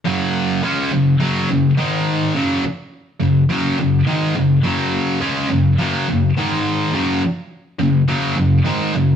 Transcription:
distorted electric guitar
0.05 F#2 C#3 F#3
0.62 C#3 G#3 C#4
0.91 F#2 C#3
1.20 F#2 C#3 F#3
1.49 F#2 C#3
1.77 G#2 D#3 G#3
2.34 F#2 C#3 F#3
3.20 F#2 C#3
3.49 F#2 C#3 F#3
3.78 F#2 C#3
4.07 G#2 D#3 G#3
4.36 F#2 C#3
4.63 F#2 C#3 F#3
5.21 C#3 G#3 C#4
5.50 F#2 C#3
5.78 F#2 C#3 F#3
6.08 F#2 C#3
6.37 G#2 D#3 G#3
6.93 F#2 C#3 F#3
7.79 F#2 C#3
8.08 F#2 C#3 F#3
8.36 F#2 C#3
8.65 G#2 D#3 G#3
8.94 F#2 C#3

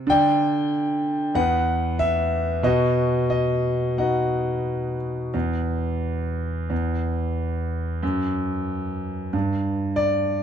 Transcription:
grand piano
0.07 D3 D5 G5
1.35 E2 B4 F#5
1.99 E5
2.63 B2 F#4 D#5
3.30 D#5
3.98 B3 D#4 F#4 D#5 F#5
5.34 E2
6.70 E2
8.03 F#2
9.33 G2
9.96 D5

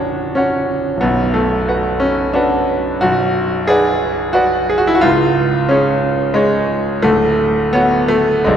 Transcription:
grand piano
Already playing: A#0 A#1 C#4 D4 F#4 C#5 F#5
0.35 C#4 F#4 C#5 F#5
0.96 B0
1.01 B1 B3
1.34 A3
1.67 F#4 B4 F#5
2.00 C#4
2.33 D4 F#4 B4 F#5
3.01 B0 B1 F#4
3.67 G#4 B4 D5 F#5
4.33 F#4 B4 D5 F#5
4.70 G#4
4.78 F#4
4.87 E4
4.95 F#4
5.01 C#1 C#2 F4
5.69 C#4 G#4 C#5
6.34 G#3 G#4 C#5
7.03 D1 D2 A3
7.73 B3 F#4 C#5 F#5
8.08 A3
8.44 B0 B1 G#3 G#4 D5 F#5

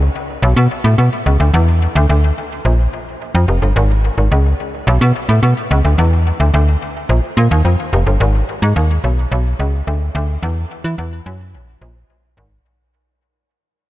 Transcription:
fm bass
0.42 B1
0.56 B2
0.84 A2
0.98 B2
1.26 C#2
1.40 D2
1.54 E2
1.95 D2
2.09 D2
2.65 A#1
3.35 F2
3.48 F1
3.62 G1
3.76 G#1
4.18 G#1
4.32 C#2
4.87 B1
5.01 B2
5.29 A2
5.43 B2
5.71 C#2
5.85 D2
5.98 E2
6.40 D2
6.54 D2
7.09 A#1
7.37 A#2
7.51 D#2
7.65 F2
7.93 F1
8.07 G1
8.20 G#1
8.62 G#2
8.76 D#2
9.04 B1
9.32 B1
9.59 C#2
9.87 D2
10.15 D2
10.43 E2
10.84 E3
10.98 E2
11.26 F#2
11.54 A#1
11.81 A#1
12.37 G#1

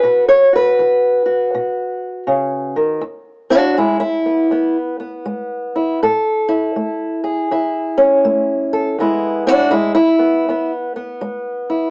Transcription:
steel-string acoustic guitar
Already playing: B4
0.03 B2 F#4
0.28 C#5
0.53 F#4 B4
0.79 D#3
1.26 F#4
1.54 B2
2.27 C#3
2.76 D#3
3.01 E2
3.50 D4 F#4
3.77 G#3 E4
4.00 E4
4.26 B3
4.51 E2 B3
5.00 B3
5.26 G#3
5.75 E4
6.02 A2 A4
6.48 E4
6.76 A3
7.24 G#4
7.51 E2 E4
7.97 C#4
8.24 A3
8.73 A4
8.98 E2 G#3 B3 E4
9.47 D4 E4 F#4
9.71 G#3 E4
9.95 E4
10.19 B3
10.49 E2 B3
10.96 B3
11.21 G#3
11.70 E4

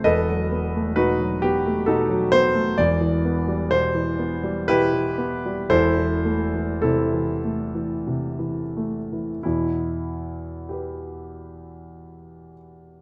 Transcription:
grand piano
0.04 E1 E2 A4 B4 D#5
0.28 F#3
0.52 B3
0.76 A3
0.96 B2 D#4 F#4 B4
1.21 F#3
1.42 B3 G4
1.66 A3
1.86 B2 D#4 F#4 A4
2.10 F#3
2.32 B3 C5
2.55 A3
2.78 E1 E2 D5
3.01 E3
3.25 B3
3.48 G3
3.71 B2 C5
3.95 E3
4.19 B3
4.44 G3
4.68 B2 E4 G4 B4
4.94 E3
5.18 B3
5.46 G3
5.69 E1 E2 E4 A4 C5
5.98 E3
6.25 A3
6.54 E3
6.82 C3 C4 E4 A4
7.14 E3
7.44 A3
7.75 E3
8.07 C3
8.39 E3
8.77 A3
9.13 E3
9.43 E2 B2 E4
10.69 G4 B4

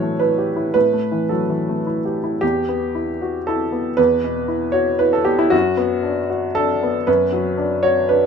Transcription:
upright piano
Already playing: A2 E3 F#3 E4 C#5
0.02 A3
0.19 E4 B4
0.38 G4
0.56 E4
0.74 A2 B4
0.93 A3
1.12 E3
1.29 F#3 A4
1.50 E3
1.69 A3
1.87 E4
2.05 G4
2.24 E4
2.41 E2 G4
2.69 B3
2.95 E4
3.22 F#4
3.47 E4 A4
3.72 B3
3.97 E2 B4
4.24 B2
4.48 E4
4.72 F#4 C#5
4.99 E4 B4
5.13 A4
5.25 B3 G4
5.39 E4
5.50 F#2 F#4
5.77 B3
6.03 D4
6.30 F#4
6.55 D4 A4
6.83 B3
7.07 F#2 B4
7.32 F#3
7.57 D4
7.83 F#4 C#5
8.09 D4 B4

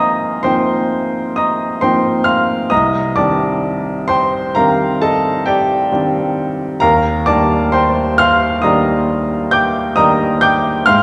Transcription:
grand piano
Already playing: G#1 F3 A#3 C4 D#4 G#4 A#4 C5 D#5 F5 G5 G#5 A#5 C6 D#6
0.43 F3 A#3 C4 D#4 C5 G5 C6
1.36 D#5 A#5 D#6
1.81 F3 A#3 C4 D#4 C5 G5 C6
2.24 F5 C6 F6
2.70 C2 D#5 A#5 D#6
3.16 D#3 G3 C4 D4 D5 A5 D6
4.08 C5 G5 C6
4.55 D#3 G3 C4 D4 A#4 F5 A#5
5.02 A4 D#5 A5
5.46 G4 D5 G5
5.92 D#3 G3 C4 D4
6.80 D#2 A#4 F5 A#5
7.26 D#3 G3 A#3 D4 D5 A5 D6
7.72 C5 G5 C6
8.18 F5 C6 F6
8.62 D#3 G3 A#3 D4 D#5 A#5 D#6
9.51 G5 D6 G6
9.96 D#3 G3 A#3 D4 D#5 A#5 D#6
10.41 G5 D6 G6
10.86 G#2 F5 C6 F6

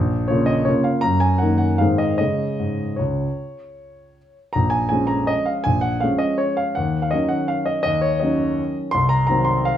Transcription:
grand piano
Already playing: A#1
0.28 C#3 A#3 F4 C#5
0.46 D#5
0.65 C#3 A#3 F4 C#5
0.84 F5
1.01 F#2 A#5
1.20 G#5
1.38 D#3 A#3 D#4 F#5
1.58 F#5
1.78 G#2 D#3 G#3 C4 F5
1.98 D#5
2.18 C#3 G#3 C#4 D#5
2.59 G#2
2.96 C#2 C#5
4.53 A#1 A#5
4.70 G#5
4.89 F3 G#3 C#4 G#5
5.07 A#5
5.27 D#5
5.46 F5
5.64 A#1 G#5
5.81 F#5
6.00 F3 G#3 C#4 F5
6.18 D#5
6.38 C#5
6.57 F5
6.75 D#2 F#5
7.02 F5
7.11 D#3 F#3 C#4 D#5
7.29 F#5
7.48 F5
7.66 D#5
7.83 D#2 D#5
8.01 C#5
8.20 D#3 F#3 C#4 D#5
8.91 C2 C6
9.09 A#5
9.27 D#3 F#3 C4 A#5
9.45 C6
9.65 F5

